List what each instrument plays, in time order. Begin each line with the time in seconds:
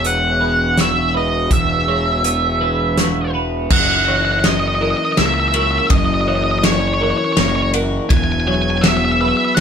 Already playing: picked electric bass E1, clean electric guitar E2 G#3 C#5, analog synth pad E3 B3 F#4 G#4
0.05 clean electric guitar B3, lead electric guitar F#5, closed hi-hat
0.41 clean electric guitar G#3 B4
0.78 clean electric guitar F#4, lead electric guitar E5, snare, closed hi-hat
1.15 clean electric guitar B3 B4, lead electric guitar D#5
1.51 picked electric bass E1, clean electric guitar E2, lead electric guitar E5, kick, closed hi-hat
1.88 clean electric guitar G#3 C#5
2.24 clean electric guitar B3, closed hi-hat
2.61 clean electric guitar G#3 B4
2.98 clean electric guitar F#4, snare, closed hi-hat
3.34 clean electric guitar B3 B4
3.70 picked electric bass F#1, clean electric guitar F#2, analog synth pad F#3 C#4 E4 A#4, lead electric guitar F#5, kick, crash
3.79 lead electric guitar F#5
3.87 lead electric guitar F#5
3.95 lead electric guitar F#5
4.01 lead electric guitar F#5
4.07 clean electric guitar E3 C#5, lead electric guitar F#5
4.16 lead electric guitar F#5
4.25 lead electric guitar F#5
4.32 lead electric guitar F#5
4.39 lead electric guitar F#5
4.44 clean electric guitar C#4, lead electric guitar D#5, snare, ride
4.52 lead electric guitar D#5
4.60 lead electric guitar D#5
4.68 lead electric guitar D#5
4.75 lead electric guitar D#5
4.81 clean electric guitar E3 A#4, lead electric guitar D#5
4.90 lead electric guitar D#5
4.97 lead electric guitar D#5
5.05 lead electric guitar D#5
5.12 lead electric guitar D#5
5.17 picked electric bass C#2, clean electric guitar A#3, lead electric guitar E5, snare, ride
5.26 lead electric guitar E5
5.34 lead electric guitar E5
5.40 lead electric guitar E5
5.48 lead electric guitar E5
5.54 clean electric guitar F#4 A#4, lead electric guitar E5, ride
5.63 lead electric guitar E5
5.71 lead electric guitar E5
5.78 lead electric guitar E5
5.87 picked electric bass F#1, lead electric guitar D#5 E5, kick, ride
5.91 clean electric guitar F#2
5.98 lead electric guitar D#5
6.05 lead electric guitar D#5
6.14 lead electric guitar D#5
6.21 lead electric guitar D#5
6.28 clean electric guitar E3 C#5, lead electric guitar D#5
6.35 lead electric guitar D#5
6.44 lead electric guitar D#5
6.51 lead electric guitar D#5
6.59 lead electric guitar D#5
6.63 clean electric guitar C#4, lead electric guitar C#5, snare, ride
6.72 lead electric guitar C#5
6.80 lead electric guitar C#5
6.88 lead electric guitar C#5
6.94 lead electric guitar C#5
7.01 clean electric guitar E3 A#4, lead electric guitar C#5
7.10 lead electric guitar C#5
7.17 lead electric guitar C#5
7.25 lead electric guitar C#5
7.33 lead electric guitar C#5
7.37 picked electric bass F#1, clean electric guitar A#3, lead electric guitar C#5, snare, ride
7.48 lead electric guitar C#5
7.56 lead electric guitar C#5
7.62 lead electric guitar C#5
7.74 clean electric guitar F#4 A#4, ride
8.09 picked electric bass E1, clean electric guitar E2, analog synth pad E3 B3 F#4 G#4, lead electric guitar G#5, kick, ride
8.17 lead electric guitar G#5
8.24 lead electric guitar G#5
8.32 lead electric guitar G#5
8.40 lead electric guitar G#5
8.47 clean electric guitar F#3 C#5, lead electric guitar G#5
8.54 lead electric guitar G#5
8.62 lead electric guitar G#5
8.70 lead electric guitar G#5
8.78 lead electric guitar E5 G#5
8.84 clean electric guitar B3, snare, ride
8.88 lead electric guitar E5
8.97 lead electric guitar E5
9.05 lead electric guitar E5
9.12 lead electric guitar E5
9.20 clean electric guitar F#3 B4, lead electric guitar E5
9.29 lead electric guitar E5
9.37 lead electric guitar E5
9.45 lead electric guitar E5
9.55 clean electric guitar G#3, lead electric guitar F#5, snare, ride